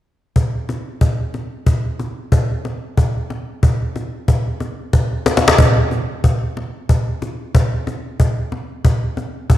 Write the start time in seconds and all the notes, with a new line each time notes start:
0.36 cajon bass
0.69 cajon slap
1.01 cajon bass
1.34 cajon slap
1.66 cajon bass
1.99 cajon slap
2.32 cajon bass
2.65 cajon slap
2.97 cajon bass
3.30 cajon slap
3.63 cajon bass
3.96 cajon slap
4.28 cajon bass
4.60 cajon slap
4.93 cajon bass
5.26 cajon slap
5.37 cajon slap
5.48 cajon slap
5.58 cajon bass
5.91 cajon slap
6.24 cajon bass
6.57 cajon slap
6.89 cajon bass
7.22 cajon slap
7.55 cajon bass
7.87 cajon slap
8.20 cajon bass
8.52 cajon slap
8.85 cajon bass
9.17 cajon slap
9.50 cajon bass